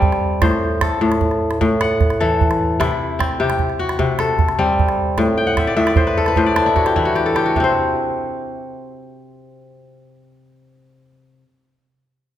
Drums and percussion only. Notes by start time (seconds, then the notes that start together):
0.02 calabash thump
0.12 calabash click
0.42 calabash thump, calabash click
0.52 calabash click
0.81 calabash thump, calabash click
1.12 calabash click
1.21 calabash thump
1.31 calabash click
1.51 calabash click
1.61 calabash thump
1.81 calabash click
2.01 calabash thump, calabash click
2.10 calabash click
2.41 calabash thump
2.51 calabash click
2.81 calabash thump, calabash click
2.91 calabash click
3.20 calabash thump, calabash click
3.50 calabash click
3.59 calabash thump
3.70 calabash click
3.89 calabash click
3.99 calabash thump
4.19 calabash click
4.39 calabash thump, calabash click
4.49 calabash click
4.79 calabash thump
4.89 calabash click
5.18 calabash thump, calabash click
5.27 calabash click
5.57 calabash thump, calabash click
5.87 calabash click
5.96 calabash thump
6.26 calabash click
6.36 calabash thump
6.56 calabash click
6.76 calabash thump
6.86 calabash click
6.96 calabash thump
7.16 calabash click
7.36 calabash click
7.56 calabash thump